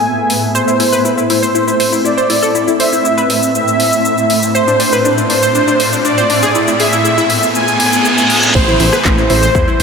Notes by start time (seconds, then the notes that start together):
Already playing: A2 A3 B3 G#4 B4 E5 G#5
0.30 open hi-hat
0.55 A2 C4 E4 C5, riser, shaker
0.68 E4, shaker
0.80 E4, open hi-hat
0.93 B4, shaker
1.05 E4, shaker
1.18 E4, shaker
1.30 E4 C5, open hi-hat
1.43 C5, shaker
1.55 E4, shaker
1.67 E4, shaker
1.80 C5, open hi-hat
1.92 E4, shaker
2.05 E4 D5, shaker
2.17 C5, shaker
2.30 E4, open hi-hat
2.43 A4, shaker
2.55 E4, shaker
2.68 E4, shaker
2.80 C5 E5, open hi-hat
2.93 E4, shaker
3.05 E4, shaker
3.18 B4, shaker
3.30 open hi-hat
3.43 shaker
3.55 E5, shaker
3.68 shaker
3.80 open hi-hat
3.93 shaker
4.05 shaker
4.18 shaker
4.30 open hi-hat
4.43 shaker
4.55 A3 C4 F4 C5, shaker
4.68 D4, shaker
4.80 D4, open hi-hat
4.93 B4, shaker
5.05 D4, shaker
5.18 D4, shaker
5.30 D4 C5, open hi-hat
5.43 C5, shaker
5.55 D4, shaker
5.68 D4, shaker
5.80 C5, open hi-hat
5.93 D4, shaker
6.05 D4 D5, shaker
6.18 C5, shaker
6.30 D4, open hi-hat
6.43 G#4, shaker
6.55 B3 E4 G#4, shaker
6.68 E4, shaker
6.80 G#4 E5, open hi-hat
6.93 E4, shaker
7.05 E4, shaker
7.18 E4, shaker
7.30 open hi-hat
7.43 shaker
7.55 G#5, reverse cymbal, shaker
7.68 shaker
7.80 open hi-hat
7.93 shaker
8.05 shaker
8.18 shaker
8.30 open hi-hat
8.43 shaker
8.55 A1 E3 A3 C4 C5, kick, crash, downlifter, shaker
8.68 E4, shaker
8.80 A1 E4, open hi-hat
8.93 B4, cross-stick, shaker
9.05 A1 E4, kick, clap, shaker
9.18 E4, shaker
9.30 A1 E4 C5, open hi-hat
9.43 C5, shaker
9.55 E2 E4, kick, shaker
9.68 E4, shaker
9.80 open hi-hat